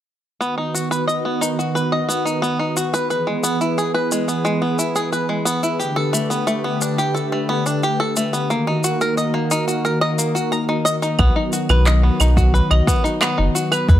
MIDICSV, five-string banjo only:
0, 0, Header, 1, 2, 480
1, 0, Start_track
1, 0, Key_signature, 5, "major"
1, 0, Tempo, 674157
1, 290, Time_signature, 4, 2, 24, 8
1, 9967, End_track
2, 0, Start_track
2, 0, Title_t, "Five-string banjo"
2, 0, Program_c, 0, 105
2, 289, Note_on_c, 0, 59, 82
2, 397, Note_off_c, 0, 59, 0
2, 410, Note_on_c, 0, 63, 64
2, 518, Note_off_c, 0, 63, 0
2, 530, Note_on_c, 0, 66, 64
2, 638, Note_off_c, 0, 66, 0
2, 648, Note_on_c, 0, 71, 84
2, 757, Note_off_c, 0, 71, 0
2, 765, Note_on_c, 0, 75, 70
2, 876, Note_off_c, 0, 75, 0
2, 891, Note_on_c, 0, 59, 62
2, 998, Note_off_c, 0, 59, 0
2, 1006, Note_on_c, 0, 63, 83
2, 1116, Note_off_c, 0, 63, 0
2, 1132, Note_on_c, 0, 66, 61
2, 1239, Note_off_c, 0, 66, 0
2, 1247, Note_on_c, 0, 71, 73
2, 1357, Note_off_c, 0, 71, 0
2, 1368, Note_on_c, 0, 75, 86
2, 1477, Note_off_c, 0, 75, 0
2, 1485, Note_on_c, 0, 59, 80
2, 1596, Note_off_c, 0, 59, 0
2, 1605, Note_on_c, 0, 63, 68
2, 1716, Note_off_c, 0, 63, 0
2, 1724, Note_on_c, 0, 59, 89
2, 1835, Note_off_c, 0, 59, 0
2, 1847, Note_on_c, 0, 63, 64
2, 1957, Note_off_c, 0, 63, 0
2, 1969, Note_on_c, 0, 66, 66
2, 2078, Note_off_c, 0, 66, 0
2, 2091, Note_on_c, 0, 71, 91
2, 2199, Note_off_c, 0, 71, 0
2, 2209, Note_on_c, 0, 71, 66
2, 2318, Note_off_c, 0, 71, 0
2, 2328, Note_on_c, 0, 56, 68
2, 2437, Note_off_c, 0, 56, 0
2, 2446, Note_on_c, 0, 59, 80
2, 2556, Note_off_c, 0, 59, 0
2, 2570, Note_on_c, 0, 64, 68
2, 2678, Note_off_c, 0, 64, 0
2, 2691, Note_on_c, 0, 68, 71
2, 2799, Note_off_c, 0, 68, 0
2, 2809, Note_on_c, 0, 71, 82
2, 2917, Note_off_c, 0, 71, 0
2, 2933, Note_on_c, 0, 56, 78
2, 3039, Note_off_c, 0, 56, 0
2, 3048, Note_on_c, 0, 59, 62
2, 3157, Note_off_c, 0, 59, 0
2, 3166, Note_on_c, 0, 56, 97
2, 3276, Note_off_c, 0, 56, 0
2, 3287, Note_on_c, 0, 59, 65
2, 3397, Note_off_c, 0, 59, 0
2, 3409, Note_on_c, 0, 64, 67
2, 3517, Note_off_c, 0, 64, 0
2, 3529, Note_on_c, 0, 68, 85
2, 3637, Note_off_c, 0, 68, 0
2, 3649, Note_on_c, 0, 71, 75
2, 3758, Note_off_c, 0, 71, 0
2, 3767, Note_on_c, 0, 56, 62
2, 3876, Note_off_c, 0, 56, 0
2, 3883, Note_on_c, 0, 59, 87
2, 3995, Note_off_c, 0, 59, 0
2, 4009, Note_on_c, 0, 64, 64
2, 4117, Note_off_c, 0, 64, 0
2, 4126, Note_on_c, 0, 67, 65
2, 4236, Note_off_c, 0, 67, 0
2, 4245, Note_on_c, 0, 69, 88
2, 4356, Note_off_c, 0, 69, 0
2, 4365, Note_on_c, 0, 57, 81
2, 4476, Note_off_c, 0, 57, 0
2, 4487, Note_on_c, 0, 59, 67
2, 4596, Note_off_c, 0, 59, 0
2, 4607, Note_on_c, 0, 57, 91
2, 4717, Note_off_c, 0, 57, 0
2, 4730, Note_on_c, 0, 59, 65
2, 4838, Note_off_c, 0, 59, 0
2, 4854, Note_on_c, 0, 62, 62
2, 4960, Note_off_c, 0, 62, 0
2, 4972, Note_on_c, 0, 67, 81
2, 5079, Note_off_c, 0, 67, 0
2, 5087, Note_on_c, 0, 69, 74
2, 5197, Note_off_c, 0, 69, 0
2, 5214, Note_on_c, 0, 57, 71
2, 5320, Note_off_c, 0, 57, 0
2, 5333, Note_on_c, 0, 59, 94
2, 5439, Note_off_c, 0, 59, 0
2, 5455, Note_on_c, 0, 62, 67
2, 5560, Note_off_c, 0, 62, 0
2, 5577, Note_on_c, 0, 67, 78
2, 5682, Note_off_c, 0, 67, 0
2, 5695, Note_on_c, 0, 69, 89
2, 5801, Note_off_c, 0, 69, 0
2, 5814, Note_on_c, 0, 57, 88
2, 5920, Note_off_c, 0, 57, 0
2, 5932, Note_on_c, 0, 59, 71
2, 6039, Note_off_c, 0, 59, 0
2, 6053, Note_on_c, 0, 58, 85
2, 6160, Note_off_c, 0, 58, 0
2, 6175, Note_on_c, 0, 63, 71
2, 6281, Note_off_c, 0, 63, 0
2, 6295, Note_on_c, 0, 66, 65
2, 6400, Note_off_c, 0, 66, 0
2, 6416, Note_on_c, 0, 70, 89
2, 6521, Note_off_c, 0, 70, 0
2, 6532, Note_on_c, 0, 75, 76
2, 6639, Note_off_c, 0, 75, 0
2, 6649, Note_on_c, 0, 58, 68
2, 6758, Note_off_c, 0, 58, 0
2, 6772, Note_on_c, 0, 63, 90
2, 6879, Note_off_c, 0, 63, 0
2, 6890, Note_on_c, 0, 66, 68
2, 6998, Note_off_c, 0, 66, 0
2, 7011, Note_on_c, 0, 70, 82
2, 7119, Note_off_c, 0, 70, 0
2, 7130, Note_on_c, 0, 75, 95
2, 7238, Note_off_c, 0, 75, 0
2, 7251, Note_on_c, 0, 58, 68
2, 7358, Note_off_c, 0, 58, 0
2, 7369, Note_on_c, 0, 66, 72
2, 7477, Note_off_c, 0, 66, 0
2, 7489, Note_on_c, 0, 82, 79
2, 7598, Note_off_c, 0, 82, 0
2, 7609, Note_on_c, 0, 63, 72
2, 7718, Note_off_c, 0, 63, 0
2, 7725, Note_on_c, 0, 75, 93
2, 7796, Note_off_c, 0, 75, 0
2, 7849, Note_on_c, 0, 63, 86
2, 7957, Note_off_c, 0, 63, 0
2, 7968, Note_on_c, 0, 59, 81
2, 8077, Note_off_c, 0, 59, 0
2, 8088, Note_on_c, 0, 63, 65
2, 8197, Note_off_c, 0, 63, 0
2, 8208, Note_on_c, 0, 66, 68
2, 8317, Note_off_c, 0, 66, 0
2, 8329, Note_on_c, 0, 71, 88
2, 8438, Note_off_c, 0, 71, 0
2, 8446, Note_on_c, 0, 75, 81
2, 8556, Note_off_c, 0, 75, 0
2, 8568, Note_on_c, 0, 59, 64
2, 8677, Note_off_c, 0, 59, 0
2, 8690, Note_on_c, 0, 63, 83
2, 8798, Note_off_c, 0, 63, 0
2, 8807, Note_on_c, 0, 66, 67
2, 8916, Note_off_c, 0, 66, 0
2, 8927, Note_on_c, 0, 71, 77
2, 9037, Note_off_c, 0, 71, 0
2, 9047, Note_on_c, 0, 75, 91
2, 9156, Note_off_c, 0, 75, 0
2, 9166, Note_on_c, 0, 59, 87
2, 9276, Note_off_c, 0, 59, 0
2, 9285, Note_on_c, 0, 63, 74
2, 9395, Note_off_c, 0, 63, 0
2, 9407, Note_on_c, 0, 59, 97
2, 9517, Note_off_c, 0, 59, 0
2, 9525, Note_on_c, 0, 63, 69
2, 9636, Note_off_c, 0, 63, 0
2, 9647, Note_on_c, 0, 66, 63
2, 9757, Note_off_c, 0, 66, 0
2, 9766, Note_on_c, 0, 71, 90
2, 9876, Note_off_c, 0, 71, 0
2, 9890, Note_on_c, 0, 71, 67
2, 9967, Note_off_c, 0, 71, 0
2, 9967, End_track
0, 0, End_of_file